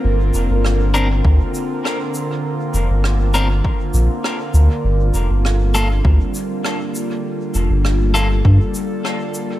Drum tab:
SH |-x-x-x-x|-x-x-x-x|-x-x-x-x|-x-x-x-x|
SD |--r---r-|--r---r-|--r---r-|--r---r-|
BD |----o---|----o---|----o---|----o---|